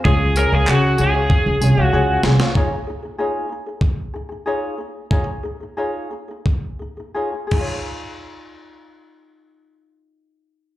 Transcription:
0.05 0.44 C#2 loud
0.05 0.36 C#4 medium
0.05 0.37 F4 medium
0.05 0.35 G#4 medium
0.05 0.38 G#4 loud
0.05 0.37 C#5 medium
0.05 kick loud
0.36 0.53 C#4 medium
0.36 0.53 F4 medium
0.36 0.52 G#4 medium
0.36 0.53 A#4 loud
0.36 0.51 C#5 medium
0.36 tambourine medium
0.52 0.65 C#2 medium
0.52 0.68 C#4 soft
0.52 0.68 F4 soft
0.52 0.70 G#4 medium
0.52 0.68 C#5 soft
0.67 0.94 C#3 loud
0.67 0.98 C#4 medium
0.67 1.01 F#4 medium
0.67 0.97 G#4 medium
0.67 0.99 C#5 medium
0.67 clap loud
0.98 1.25 C#2 medium
0.98 1.15 C#4 medium
0.98 1.15 F4 medium
0.98 1.14 G#4 medium
0.98 1.83 G#4 medium
0.98 1.13 C#5 medium
0.98 tambourine medium
1.15 1.61 C#4 soft
1.15 1.61 F4 soft
1.15 1.62 C#5 medium
1.30 kick loud
1.46 1.59 C#2 medium
1.61 1.74 C2 medium
1.61 1.78 C#4 medium
1.61 1.78 F4 medium
1.61 1.77 G#4 medium
1.61 1.76 C#5 medium
1.61 tambourine medium
1.77 1.90 C#2 medium
1.77 1.92 C#4 soft
1.77 1.93 F4 medium
1.77 1.93 C#5 medium
1.83 2.21 F#4 medium
1.93 2.19 C#2 medium
1.93 2.24 C#4 medium
1.93 2.25 F4 medium
1.93 2.23 G#4 medium
1.93 2.25 C#5 medium
2.23 2.37 C2 medium
2.23 2.40 C#4 medium
2.23 2.41 F4 medium
2.23 2.40 G#4 medium
2.23 2.40 C#5 medium
2.23 snare medium
2.40 2.56 C#4 soft
2.40 2.55 F4 medium
2.40 2.56 C#5 medium
2.40 snare medium
2.55 2.71 D#4 medium
2.55 2.71 F4 medium
2.55 2.70 G#4 medium
2.55 2.72 C#5 medium
2.55 kick loud
2.71 2.86 G#4 soft
2.87 3.04 D#4 medium
2.87 3.01 G#4 medium
3.03 3.18 D#4 soft
3.03 3.17 G#4 soft
3.18 3.50 D#4 medium
3.18 3.49 F4 medium
3.18 3.48 G#4 medium
3.18 3.51 C#5 medium
3.49 3.67 D#4 medium
3.49 3.65 G#4 medium
3.66 3.92 D#4 soft
3.66 3.91 G#4 soft
3.81 kick loud
4.14 4.30 D#4 medium
4.14 4.28 G#4 medium
4.29 4.46 D#4 medium
4.29 4.45 G#4 soft
4.46 4.78 D#4 medium
4.46 4.77 F4 medium
4.46 4.77 G#4 medium
4.46 4.79 C#5 medium
4.78 5.05 D#4 medium
4.78 5.04 G#4 medium
5.11 5.27 D#4 medium
5.11 5.26 F4 medium
5.11 5.25 G#4 medium
5.11 5.28 C#5 medium
5.11 kick loud
5.26 5.44 D#4 soft
5.26 5.42 G#4 soft
5.43 5.61 D#4 medium
5.43 5.59 G#4 medium
5.60 5.76 D#4 soft
5.60 5.76 G#4 soft
5.77 6.11 D#4 medium
5.77 6.10 F4 medium
5.77 6.10 G#4 medium
5.77 6.11 C#5 medium
6.11 6.29 D#4 medium
6.11 6.27 G#4 medium
6.28 6.57 D#4 medium
6.28 6.56 G#4 soft
6.46 kick medium
6.79 6.98 D#4 medium
6.79 6.96 G#4 medium
6.97 7.14 D#4 soft
6.97 7.13 G#4 soft
7.14 7.33 D#4 medium
7.14 7.33 F4 medium
7.14 7.31 G#4 medium
7.14 7.34 C#5 medium
7.32 7.51 D#4 soft
7.32 7.46 G#4 soft
7.47 10.77 G#4 medium
7.51 10.77 D#4 medium
7.51 kick medium
7.51 crash medium
7.56 10.77 F4 medium
7.61 10.77 C#5 medium

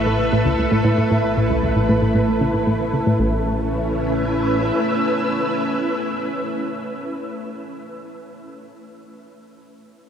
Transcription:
0.00 1.08 A1 medium
0.00 3.19 A3 medium
0.00 3.21 A3 medium
0.00 3.19 E4 medium
0.00 3.20 A4 medium
0.00 3.19 B4 medium
0.00 3.19 E5 medium
0.06 0.17 A2 medium
0.33 0.40 A2 medium
0.45 0.53 C#2 medium
0.58 0.63 C#2 medium
0.71 0.76 A2 medium
0.84 0.89 A2 medium
0.98 1.05 A2 medium
1.11 3.17 A1 medium
1.11 1.22 A2 medium
1.37 1.44 A2 medium
1.50 1.57 C#2 medium
1.63 1.67 C#2 medium
1.76 1.80 A2 medium
1.89 1.93 A2 medium
2.02 2.09 A2 medium
2.15 2.26 A2 medium
2.41 2.52 C#3 medium
2.54 2.58 A2 medium
2.67 2.74 A2 medium
2.93 3.00 C#3 medium
3.07 3.14 A2 medium
3.19 4.72 A1 medium
3.19 3.44 A1 medium
3.19 7.54 A3 medium
3.28 7.62 C#4 medium
3.36 7.70 E4 medium
3.44 7.78 B4 medium
3.51 7.85 E5 medium

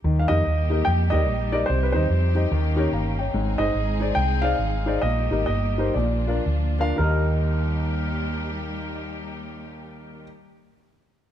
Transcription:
0.04 0.26 D#2 medium
0.04 0.67 D#3 medium
0.04 2.48 G3 medium
0.04 1.67 A#3 soft
0.04 2.49 D#4 soft
0.04 1.67 G4 medium
0.19 0.29 F5 medium
0.28 0.43 F2 medium
0.28 0.41 D#4 medium
0.28 0.41 G4 medium
0.28 0.41 A#4 medium
0.28 0.87 D#5 medium
0.28 0.41 D#5 medium
0.46 0.81 D#2 medium
0.70 0.82 D#4 medium
0.70 0.82 G4 medium
0.70 0.82 A#4 medium
0.70 0.83 D#5 medium
0.85 1.09 F2 medium
0.85 0.91 G5 medium
1.10 1.28 D#2 medium
1.10 1.23 D#4 medium
1.10 1.23 G4 medium
1.10 1.24 A#4 medium
1.10 1.24 D5 medium
1.10 1.54 D#5 medium
1.28 1.63 A#1 medium
1.52 1.64 D#4 medium
1.52 1.64 G4 medium
1.52 1.65 A#4 medium
1.52 1.67 D5 medium
1.52 1.65 D#5 medium
1.66 1.91 C2 medium
1.66 2.32 C3 soft
1.66 2.50 C4 medium
1.66 3.32 G4 medium
1.66 1.85 C5 medium
1.83 1.93 B4 medium
1.93 2.08 D#2 medium
1.93 2.06 D#4 medium
1.93 2.06 G4 medium
1.93 2.32 C5 medium
1.93 2.06 C5 medium
1.93 2.06 D#5 medium
2.10 2.45 F2 medium
2.35 2.46 D#4 medium
2.35 2.47 G4 medium
2.35 2.47 C5 medium
2.35 2.47 D#5 medium
2.51 2.86 D#2 medium
2.51 3.14 D#3 medium
2.51 3.32 A#3 medium
2.51 3.32 C#4 medium
2.51 5.92 D#4 medium
2.76 2.88 D#4 medium
2.76 2.88 G4 medium
2.76 2.88 A#4 medium
2.76 2.88 C#5 medium
2.93 3.27 G1 medium
2.93 3.17 F5 soft
2.93 3.17 A#5 medium
3.19 3.58 C#5 medium
3.19 3.57 G5 medium
3.33 3.55 G#1 medium
3.33 3.97 G#2 medium
3.33 5.01 G#3 medium
3.33 5.01 C4 medium
3.33 5.01 G#4 medium
3.58 3.72 G1 medium
3.58 3.70 D#4 medium
3.58 3.71 G#4 medium
3.58 3.71 C5 medium
3.58 3.97 D#5 medium
3.58 3.71 D#5 medium
3.75 4.10 G#1 medium
4.00 4.12 D#4 medium
4.00 4.12 G#4 medium
4.00 4.12 C5 medium
4.00 4.13 D5 medium
4.15 4.52 C2 medium
4.15 4.43 G5 medium
4.42 4.54 D#4 medium
4.42 4.55 G#4 medium
4.42 4.55 C5 soft
4.42 4.55 D5 medium
4.42 5.04 F5 medium
4.59 4.96 G#1 medium
4.86 4.98 D#4 medium
4.86 4.98 G#4 medium
4.86 4.99 C5 medium
4.86 4.99 D5 medium
5.02 5.27 A#1 medium
5.02 5.74 A#2 soft
5.02 5.95 G3 medium
5.02 6.98 A#3 soft
5.02 5.95 G4 medium
5.02 5.44 D#5 medium
5.31 5.46 G#1 medium
5.31 5.44 D#4 medium
5.31 5.44 G4 medium
5.31 5.44 A#4 medium
5.31 5.44 D#5 medium
5.46 5.89 G1 medium
5.46 5.96 D#5 medium
5.78 5.91 D#4 medium
5.78 5.91 G4 medium
5.78 5.92 A#4 medium
5.78 5.92 C5 medium
5.94 6.38 A#1 medium
5.94 6.75 A#2 medium
5.94 6.98 F3 medium
5.94 6.98 D4 medium
5.94 6.98 F4 medium
5.94 6.74 D5 medium
6.27 6.41 D4 medium
6.27 6.41 F4 medium
6.27 6.41 A#4 medium
6.27 6.42 D5 medium
6.46 6.91 D2 medium
6.79 6.94 D4 medium
6.79 6.94 F4 medium
6.79 6.94 A#4 medium
6.79 6.94 F5 medium
6.96 10.24 D#2 medium
6.96 10.25 G3 medium
6.96 10.25 A#3 medium
6.96 10.21 D#4 medium
6.96 10.25 D#4 soft
6.96 10.23 G4 medium
6.96 10.24 G4 medium
6.96 10.23 A#4 medium
7.01 10.26 A#4 medium
7.01 10.28 D#5 medium

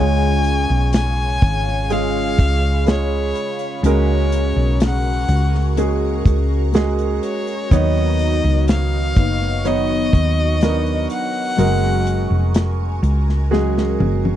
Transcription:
0.00 0.65 C#2 loud
0.00 1.38 C#3 medium
0.00 1.87 C#3 medium
0.00 1.80 G#3 medium
0.00 1.90 G#3 medium
0.00 1.91 C#4 medium
0.00 1.81 F4 medium
0.00 1.92 F4 medium
0.00 3.80 G#4 medium
0.00 1.93 G#4 medium
0.00 1.81 C#5 medium
0.00 3.80 C#5 medium
0.00 3.81 F5 medium
0.00 0.94 G#5 loud
0.00 1.86 C#6 medium
0.44 closed hi-hat medium
0.70 1.38 B1 medium
0.93 1.94 G#5 loud
0.93 snare loud
0.93 closed hi-hat medium
1.41 2.35 G#1 medium
1.41 kick loud
1.41 closed hi-hat medium
1.68 snare soft
1.89 3.81 C#3 medium
1.89 2.82 G#3 medium
1.89 3.83 G#3 medium
1.89 3.85 C#4 medium
1.89 2.83 F4 medium
1.89 2.83 G#4 medium
1.89 2.88 F5 loud
1.89 3.83 B5 medium
1.89 closed hi-hat medium
1.93 3.85 F4 medium
1.93 3.87 G#4 medium
2.39 3.32 C#2 medium
2.39 kick medium
2.39 closed hi-hat medium
2.86 3.79 G#3 medium
2.86 3.79 F4 medium
2.86 3.79 G#4 medium
2.86 3.81 C#5 medium
2.86 snare loud
2.86 closed hi-hat medium
3.35 closed hi-hat medium
3.59 closed hi-hat soft
3.82 4.52 C#2 loud
3.82 5.75 C#3 medium
3.82 5.26 C#3 medium
3.82 5.69 G#3 medium
3.82 5.76 A#3 medium
3.82 5.77 C#4 medium
3.82 14.36 F#4 medium
3.82 5.69 F#4 medium
3.82 7.68 A#4 medium
3.82 5.76 G#5 medium
3.82 7.68 C#6 medium
3.82 closed hi-hat loud
3.86 5.77 F#4 medium
3.86 5.78 G#4 medium
3.86 5.69 A#4 medium
3.86 4.79 C#5 medium
4.32 closed hi-hat medium
4.56 5.25 B1 medium
4.80 snare loud
4.80 closed hi-hat medium
4.84 5.75 F#5 medium
5.29 6.22 C#2 loud
5.29 closed hi-hat medium
5.54 snare soft
5.76 6.74 C#3 medium
5.76 6.69 G#3 medium
5.76 6.71 A#3 medium
5.76 6.74 C#4 medium
5.76 6.75 F#4 medium
5.76 6.70 F#4 medium
5.76 6.70 G#4 medium
5.76 6.75 G#4 medium
5.76 7.69 A#5 medium
5.76 closed hi-hat medium
6.26 7.19 C#2 loud
6.26 kick loud
6.26 closed hi-hat medium
6.73 7.66 G#3 medium
6.73 7.70 A#3 medium
6.73 7.71 C#4 medium
6.73 7.66 F#4 medium
6.73 7.71 F#4 medium
6.73 7.67 G#4 medium
6.73 7.72 G#4 medium
6.73 snare loud
6.73 closed hi-hat medium
6.99 closed hi-hat soft
7.23 7.74 C#5 medium
7.23 closed hi-hat medium
7.47 closed hi-hat soft
7.70 8.40 D#2 loud
7.70 9.16 D#3 medium
7.70 9.13 D#3 medium
7.70 9.64 F#3 medium
7.70 11.54 B3 medium
7.70 9.16 B3 medium
7.70 9.55 B3 medium
7.70 9.15 D#4 medium
7.70 9.55 D#4 medium
7.70 9.14 C#5 medium
7.70 9.56 C#5 medium
7.70 11.54 D#5 medium
7.70 8.69 D#5 loud
7.70 14.36 C#6 medium
7.70 kick loud
7.70 closed hi-hat medium
8.19 closed hi-hat medium
8.44 9.13 C#2 medium
8.68 9.69 F5 medium
8.68 snare loud
8.68 closed hi-hat medium
9.15 10.09 F#1 medium
9.15 9.64 B3 soft
9.15 9.64 D#4 soft
9.15 9.64 C#5 soft
9.15 kick loud
9.15 closed hi-hat medium
9.42 snare soft
9.64 10.61 D#3 medium
9.64 10.60 F#3 medium
9.64 10.57 B3 medium
9.64 10.60 B3 medium
9.64 10.57 D#4 medium
9.64 10.61 D#4 medium
9.64 10.57 C#5 medium
9.64 10.63 C#5 medium
9.64 11.11 D#5 loud
9.64 closed hi-hat medium
10.13 11.06 D#2 medium
10.13 kick loud
10.13 closed hi-hat medium
10.60 11.57 F#3 medium
10.60 11.58 B3 soft
10.60 11.54 B3 medium
10.60 10.69 D4 soft
10.60 11.59 D#4 medium
10.60 11.55 A#4 medium
10.60 11.61 C#5 medium
10.60 snare loud
10.60 closed hi-hat medium
10.69 11.57 D#4 medium
10.86 closed hi-hat soft
11.10 12.52 F#5 loud
11.10 closed hi-hat medium
11.57 12.27 F#1 loud
11.57 13.50 F#3 medium
11.57 13.42 G#3 medium
11.57 13.51 A#3 medium
11.57 13.52 C#4 medium
11.57 13.42 F#4 medium
11.57 13.51 F#4 medium
11.57 14.36 A#4 medium
11.57 13.43 A#4 medium
11.57 14.36 G#5 medium
11.57 closed hi-hat medium
11.62 13.53 G#4 medium
12.07 closed hi-hat medium
12.30 12.99 F1 medium
12.54 snare loud
12.54 closed hi-hat medium
13.03 13.96 C#2 loud
13.03 closed hi-hat medium
13.29 snare soft
13.51 14.36 F#3 medium
13.51 14.36 G#3 medium
13.51 14.36 A#3 medium
13.51 14.36 C#4 medium
13.51 14.36 F#4 medium
13.51 14.36 G#4 medium
13.51 snare medium
13.78 snare medium
14.00 14.36 F#1 medium
14.00 high tom medium
14.25 high tom medium

